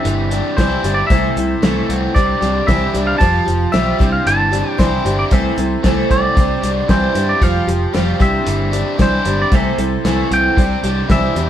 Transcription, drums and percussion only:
0.05 closed hi-hat medium
0.31 closed hi-hat medium
0.58 kick medium
0.58 snare loud
0.58 closed hi-hat medium
0.84 closed hi-hat medium
1.10 kick loud
1.10 closed hi-hat medium
1.37 closed hi-hat medium
1.63 snare loud
1.63 closed hi-hat medium
1.90 closed hi-hat medium
2.16 kick loud
2.16 closed hi-hat medium
2.42 snare soft
2.42 closed hi-hat medium
2.68 kick medium
2.68 snare loud
2.68 closed hi-hat medium
2.95 closed hi-hat soft
3.21 kick loud
3.21 closed hi-hat medium
3.48 closed hi-hat soft
3.74 snare loud
3.74 closed hi-hat medium
4.00 kick medium
4.00 closed hi-hat medium
4.27 closed hi-hat medium
4.53 closed hi-hat medium
4.79 kick medium
4.79 snare medium
4.79 closed hi-hat medium
5.06 closed hi-hat medium
5.31 kick medium
5.31 closed hi-hat medium
5.58 closed hi-hat medium
5.84 kick medium
5.84 snare loud
5.84 closed hi-hat medium
6.11 kick medium
6.11 closed hi-hat medium
6.37 kick loud
6.37 closed hi-hat medium
6.64 closed hi-hat medium
6.89 kick medium
6.89 snare loud
6.89 closed hi-hat medium
7.15 closed hi-hat medium
7.42 kick loud
7.42 closed hi-hat medium
7.69 closed hi-hat medium
7.95 snare loud
7.95 closed hi-hat medium
8.20 kick medium
8.20 closed hi-hat medium
8.47 closed hi-hat medium
8.73 closed hi-hat medium
8.99 kick medium
8.99 snare loud
8.99 closed hi-hat medium
9.25 closed hi-hat medium
9.52 kick loud
9.52 closed hi-hat medium
9.78 closed hi-hat medium
10.05 snare medium
10.05 closed hi-hat medium
10.32 closed hi-hat medium
10.57 kick loud
10.57 closed hi-hat medium
10.84 closed hi-hat medium
11.10 kick medium
11.10 snare loud
11.10 closed hi-hat medium
11.36 closed hi-hat medium

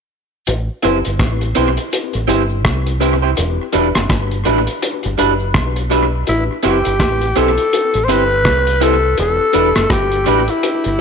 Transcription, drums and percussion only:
0.46 closed hi-hat medium
0.46 cabasa medium
0.82 closed hi-hat medium
0.82 cabasa soft
1.05 closed hi-hat medium
1.05 cabasa medium
1.19 kick loud
1.19 cross-stick loud
1.19 closed hi-hat medium
1.41 closed hi-hat soft
1.41 cabasa soft
1.55 closed hi-hat medium
1.77 closed hi-hat soft
1.77 cabasa medium
1.92 closed hi-hat medium
1.92 cabasa medium
2.13 closed hi-hat soft
2.28 closed hi-hat medium
2.28 cabasa medium
2.49 cabasa medium
2.65 kick medium
2.65 cross-stick loud
2.65 closed hi-hat medium
2.87 closed hi-hat soft
2.87 cabasa soft
3.01 closed hi-hat medium
3.01 cabasa medium
3.36 closed hi-hat medium
3.36 cabasa medium
3.72 closed hi-hat medium
3.72 cabasa soft
3.95 cross-stick medium
3.95 closed hi-hat medium
3.95 cabasa medium
4.10 kick medium
4.10 cross-stick loud
4.10 closed hi-hat medium
4.31 closed hi-hat soft
4.31 cabasa soft
4.45 closed hi-hat medium
4.67 closed hi-hat soft
4.67 cabasa medium
4.82 closed hi-hat medium
4.82 cabasa medium
5.03 closed hi-hat soft
5.18 closed hi-hat medium
5.18 cabasa medium
5.39 cabasa medium
5.54 kick medium
5.54 cross-stick medium
5.54 closed hi-hat medium
5.76 closed hi-hat medium
5.76 cabasa soft
5.91 closed hi-hat medium
5.91 cabasa medium
6.26 closed hi-hat medium
6.26 cabasa medium
6.63 closed hi-hat medium
6.63 cabasa soft
6.85 closed hi-hat medium
6.85 cabasa medium
7.00 kick loud
7.00 cross-stick medium
7.00 closed hi-hat medium
7.21 closed hi-hat soft
7.21 cabasa soft
7.35 closed hi-hat medium
7.58 closed hi-hat soft
7.58 cabasa medium
7.72 closed hi-hat medium
7.72 cabasa medium
7.94 closed hi-hat soft
8.09 closed hi-hat medium
8.09 cabasa medium
8.30 cabasa medium
8.45 kick medium
8.45 cross-stick medium
8.45 closed hi-hat medium
8.67 closed hi-hat medium
8.67 cabasa soft
8.81 closed hi-hat medium
8.81 cabasa medium
9.17 closed hi-hat medium
9.17 cabasa medium
9.53 closed hi-hat medium
9.53 cabasa soft
9.75 cross-stick medium
9.75 closed hi-hat medium
9.75 cabasa medium
9.90 kick loud
9.90 cross-stick loud
9.90 closed hi-hat medium
10.12 closed hi-hat soft
10.12 cabasa soft
10.26 closed hi-hat medium
10.48 closed hi-hat soft
10.48 cabasa medium
10.63 closed hi-hat medium
10.63 cabasa medium
10.84 closed hi-hat soft

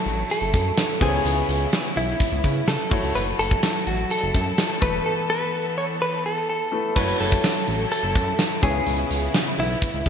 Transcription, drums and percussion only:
0.06 closed hi-hat medium
0.30 closed hi-hat loud
0.54 kick medium
0.54 closed hi-hat medium
0.77 snare loud
0.77 closed hi-hat loud
0.77 tambourine medium
1.01 kick loud
1.01 crash medium
1.25 closed hi-hat medium
1.49 closed hi-hat medium
1.73 snare loud
1.73 closed hi-hat medium
1.73 tambourine medium
1.97 closed hi-hat medium
2.20 kick loud
2.20 closed hi-hat loud
2.44 kick medium
2.44 closed hi-hat medium
2.68 snare loud
2.68 closed hi-hat loud
2.68 tambourine medium
2.91 kick loud
2.91 crash medium
3.15 closed hi-hat medium
3.39 closed hi-hat medium
3.51 kick loud
3.63 snare loud
3.63 closed hi-hat medium
3.63 tambourine medium
3.87 closed hi-hat medium
4.10 closed hi-hat loud
4.34 kick medium
4.34 closed hi-hat medium
4.58 snare loud
4.58 closed hi-hat loud
4.58 tambourine medium
4.82 kick loud
4.82 closed hi-hat medium
6.96 kick loud
6.96 crash loud
7.20 closed hi-hat medium
7.32 kick medium
7.44 snare loud
7.44 closed hi-hat medium
7.44 tambourine medium
7.68 closed hi-hat medium
7.91 closed hi-hat medium
8.15 kick medium
8.15 closed hi-hat medium
8.39 snare loud
8.39 closed hi-hat loud
8.39 tambourine medium
8.63 kick loud
8.63 closed hi-hat medium
8.87 closed hi-hat medium
9.11 closed hi-hat medium
9.34 snare loud
9.34 closed hi-hat medium
9.34 tambourine medium
9.58 closed hi-hat medium
9.82 kick loud
9.82 closed hi-hat loud
10.06 kick medium
10.06 closed hi-hat medium

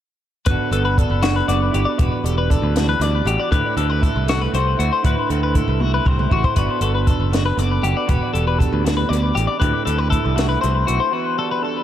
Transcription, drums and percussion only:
0.46 kick loud
0.46 closed hi-hat medium
0.72 closed hi-hat medium
0.98 kick medium
0.98 closed hi-hat medium
1.23 snare loud
1.23 closed hi-hat medium
1.49 closed hi-hat medium
1.74 closed hi-hat medium
1.99 kick loud
1.99 closed hi-hat medium
2.26 closed hi-hat medium
2.50 kick medium
2.50 closed hi-hat medium
2.76 snare loud
2.76 closed hi-hat medium
3.01 closed hi-hat medium
3.27 closed hi-hat medium
3.52 kick loud
3.52 closed hi-hat medium
3.77 closed hi-hat medium
4.03 kick medium
4.03 closed hi-hat medium
4.28 snare loud
4.28 closed hi-hat medium
4.54 closed hi-hat medium
4.80 closed hi-hat medium
5.05 kick loud
5.05 closed hi-hat medium
5.30 closed hi-hat medium
5.55 kick medium
5.55 closed hi-hat medium
5.80 high tom soft
6.06 kick medium
6.19 mid tom medium
6.31 kick medium
6.44 kick medium
6.56 kick medium
6.56 closed hi-hat medium
6.81 closed hi-hat medium
7.07 kick medium
7.07 closed hi-hat medium
7.33 snare medium
7.33 closed hi-hat medium
7.59 closed hi-hat medium
7.84 closed hi-hat medium
8.09 kick loud
8.09 closed hi-hat medium
8.35 closed hi-hat medium
8.60 kick medium
8.60 closed hi-hat medium
8.86 snare medium
8.86 closed hi-hat medium
9.13 closed hi-hat medium
9.37 closed hi-hat medium
9.62 kick loud
9.62 closed hi-hat medium
9.87 closed hi-hat medium
10.12 kick medium
10.12 closed hi-hat medium
10.38 snare loud
10.38 closed hi-hat medium
10.63 closed hi-hat medium
10.88 closed hi-hat medium

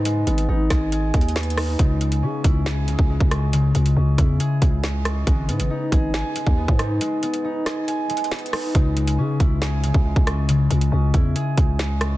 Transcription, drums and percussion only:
0.05 closed hi-hat medium
0.27 closed hi-hat medium
0.38 closed hi-hat medium
0.70 kick loud
0.70 cross-stick loud
0.70 snare medium
0.70 closed hi-hat medium
0.92 closed hi-hat medium
1.14 kick medium
1.14 closed hi-hat medium
1.21 closed hi-hat medium
1.28 closed hi-hat medium
1.36 snare loud
1.36 closed hi-hat medium
1.43 closed hi-hat medium
1.50 closed hi-hat medium
1.57 cross-stick loud
1.57 open hi-hat medium
1.79 kick loud
1.79 closed hi-hat medium
2.01 closed hi-hat medium
2.12 closed hi-hat medium
2.44 kick loud
2.44 closed hi-hat medium
2.66 snare loud
2.66 closed hi-hat medium
2.88 closed hi-hat medium
2.99 kick medium
3.20 kick loud
3.31 cross-stick loud
3.31 closed hi-hat medium
3.53 closed hi-hat medium
3.75 closed hi-hat medium
3.86 closed hi-hat medium
4.18 kick loud
4.18 closed hi-hat medium
4.40 closed hi-hat medium
4.62 kick medium
4.62 closed hi-hat medium
4.83 snare loud
4.83 closed hi-hat medium
5.05 cross-stick loud
5.05 closed hi-hat medium
5.27 kick loud
5.27 closed hi-hat medium
5.49 closed hi-hat medium
5.60 closed hi-hat medium
5.92 kick loud
5.92 closed hi-hat medium
6.14 snare loud
6.14 closed hi-hat medium
6.36 closed hi-hat medium
6.47 kick medium
6.68 kick loud
6.79 cross-stick loud
6.79 closed hi-hat medium
7.01 closed hi-hat medium
7.23 closed hi-hat medium
7.34 closed hi-hat medium
7.66 cross-stick loud
7.66 snare medium
7.66 closed hi-hat medium
7.88 closed hi-hat medium
8.10 closed hi-hat medium
8.17 closed hi-hat medium
8.24 closed hi-hat medium
8.31 snare loud
8.31 closed hi-hat medium
8.39 closed hi-hat medium
8.46 closed hi-hat medium
8.53 cross-stick loud
8.53 open hi-hat medium
8.75 kick loud
8.75 closed hi-hat medium
8.97 closed hi-hat medium
9.07 closed hi-hat medium
9.40 kick loud
9.40 closed hi-hat loud
9.62 snare loud
9.62 closed hi-hat medium
9.84 closed hi-hat medium
9.94 kick medium
10.16 kick loud
10.27 cross-stick loud
10.27 closed hi-hat medium
10.49 closed hi-hat medium
10.71 closed hi-hat medium
10.81 closed hi-hat medium
11.14 kick loud
11.14 closed hi-hat medium
11.36 closed hi-hat medium
11.57 kick medium
11.57 closed hi-hat medium
11.79 snare loud
11.79 closed hi-hat medium
12.01 cross-stick loud
12.01 closed hi-hat medium

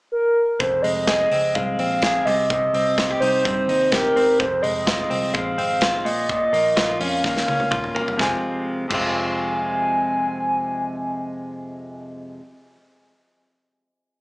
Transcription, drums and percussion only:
0.60 kick loud
0.60 closed hi-hat medium
0.84 open hi-hat medium
1.07 kick medium
1.07 snare medium
1.31 open hi-hat medium
1.55 kick medium
1.55 closed hi-hat medium
1.79 open hi-hat medium
2.02 kick loud
2.02 snare medium
2.02 closed hi-hat medium
2.27 open hi-hat medium
2.50 kick loud
2.50 closed hi-hat medium
2.74 open hi-hat medium
2.98 kick medium
2.98 snare medium
2.98 closed hi-hat medium
3.22 open hi-hat medium
3.45 kick loud
3.45 closed hi-hat medium
3.69 open hi-hat medium
3.92 kick loud
3.92 snare loud
3.92 closed hi-hat medium
4.17 open hi-hat medium
4.40 kick loud
4.40 closed hi-hat medium
4.64 open hi-hat medium
4.87 kick loud
4.87 snare loud
4.87 closed hi-hat medium
5.11 open hi-hat medium
5.34 kick loud
5.34 closed hi-hat medium
5.59 open hi-hat medium
5.81 kick loud
5.81 snare loud
5.81 closed hi-hat medium
6.06 open hi-hat medium
6.29 kick loud
6.29 closed hi-hat medium
6.54 open hi-hat medium
6.77 kick medium
6.77 snare loud
6.77 closed hi-hat medium
7.01 open hi-hat medium
7.24 kick loud
7.24 snare soft
7.37 snare medium
7.48 high tom medium
7.60 high tom medium
7.72 kick loud
7.72 mid tom medium
7.84 mid tom medium
7.96 floor tom medium
8.08 floor tom medium
8.19 kick loud
8.19 snare medium
8.91 kick medium
8.91 crash medium

